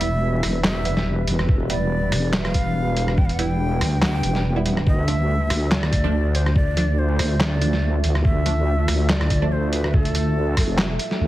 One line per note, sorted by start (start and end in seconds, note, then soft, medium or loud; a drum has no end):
0.00 0.41 E1 loud
0.00 4.83 G3 medium
0.00 0.09 G3 medium
0.00 0.09 B3 medium
0.00 1.45 E4 medium
0.00 0.09 E4 medium
0.00 4.83 B4 medium
0.00 0.60 E5 loud
0.00 closed hi-hat medium
0.43 1.26 E1 medium
0.43 cross-stick medium
0.43 open hi-hat medium
0.64 1.24 E5 loud
0.64 snare loud
0.64 clap medium
0.85 0.98 G3 medium
0.85 0.98 B3 medium
0.85 0.98 E4 medium
0.85 closed hi-hat medium
0.97 snare soft
1.28 1.47 E1 loud
1.28 closed hi-hat medium
1.39 cross-stick medium
1.49 2.11 E1 medium
1.49 4.83 D4 medium
1.49 kick loud
1.70 1.78 G3 medium
1.70 1.78 B3 medium
1.70 1.78 E4 loud
1.70 2.35 D5 loud
1.70 closed hi-hat medium
2.12 2.53 E1 loud
2.12 cross-stick medium
2.12 open hi-hat medium
2.33 2.48 E5 loud
2.33 snare loud
2.33 clap medium
2.45 3.20 F5 loud
2.45 cross-stick medium
2.54 3.80 E1 medium
2.54 kick medium
2.54 closed hi-hat medium
2.97 closed hi-hat medium
3.08 cross-stick medium
3.18 3.27 G5 loud
3.18 kick loud
3.25 3.34 F5 loud
3.25 closed hi-hat soft
3.33 3.46 F#5 loud
3.39 3.47 G3 medium
3.39 3.47 B3 medium
3.39 3.47 E4 loud
3.39 closed hi-hat medium
3.46 4.02 G5 loud
3.81 4.22 D2 loud
3.81 cross-stick medium
3.81 open hi-hat medium
4.02 4.13 F#5 loud
4.02 snare loud
4.02 clap medium
4.13 4.62 G5 loud
4.23 4.85 E1 loud
4.23 closed hi-hat medium
4.35 snare soft
4.56 4.64 G3 medium
4.56 4.64 B3 medium
4.56 4.64 E4 medium
4.66 4.78 G3 medium
4.66 4.78 B3 medium
4.66 4.78 E4 medium
4.66 closed hi-hat medium
4.77 cross-stick medium
4.87 5.49 D2 medium
4.87 11.27 A3 medium
4.87 11.27 F4 medium
4.87 8.21 D5 medium
4.87 5.03 D#5 loud
4.87 kick loud
5.03 5.73 E5 loud
5.08 5.16 F3 medium
5.08 5.16 A3 medium
5.08 5.16 D4 loud
5.08 closed hi-hat medium
5.50 5.91 D2 loud
5.50 cross-stick medium
5.50 open hi-hat medium
5.71 6.37 D5 loud
5.71 snare loud
5.71 clap medium
5.83 cross-stick medium
5.92 7.18 D2 medium
5.92 kick medium
5.92 closed hi-hat medium
6.04 6.15 F3 loud
6.04 6.15 A3 loud
6.04 6.15 D4 loud
6.35 6.56 C5 loud
6.35 closed hi-hat medium
6.46 cross-stick medium
6.56 7.00 D5 loud
6.56 kick loud
6.77 6.85 F3 medium
6.77 6.85 A3 medium
6.77 6.85 D4 loud
6.77 closed hi-hat medium
6.98 7.42 C5 loud
7.19 8.02 D2 medium
7.19 cross-stick medium
7.19 open hi-hat loud
7.40 8.04 D5 loud
7.40 snare loud
7.40 clap medium
7.61 7.74 F3 medium
7.61 7.74 A3 medium
7.61 7.74 D4 medium
7.61 closed hi-hat medium
7.73 snare soft
8.04 8.23 D2 medium
8.04 closed hi-hat medium
8.15 cross-stick medium
8.25 8.87 D2 loud
8.25 11.27 E5 medium
8.25 9.11 E5 loud
8.25 kick loud
8.46 8.54 F3 medium
8.46 8.54 A3 medium
8.46 8.54 D4 loud
8.46 closed hi-hat medium
8.88 9.29 D2 loud
8.88 cross-stick medium
8.88 open hi-hat loud
9.09 9.53 D5 loud
9.09 snare loud
9.09 clap medium
9.21 cross-stick medium
9.30 10.56 D2 loud
9.30 kick medium
9.30 closed hi-hat medium
9.42 9.53 F3 loud
9.42 9.53 A3 loud
9.42 9.53 D4 loud
9.52 9.72 C5 medium
9.73 9.96 B4 medium
9.73 closed hi-hat medium
9.84 cross-stick medium
9.94 10.05 G#4 loud
9.94 kick loud
10.05 11.21 A4 loud
10.05 closed hi-hat soft
10.15 closed hi-hat medium
10.57 10.98 F1 loud
10.57 kick medium
10.57 cross-stick soft
10.57 open hi-hat loud
10.78 snare loud
10.78 clap medium
10.99 closed hi-hat medium
11.11 snare soft
11.21 11.27 D2 loud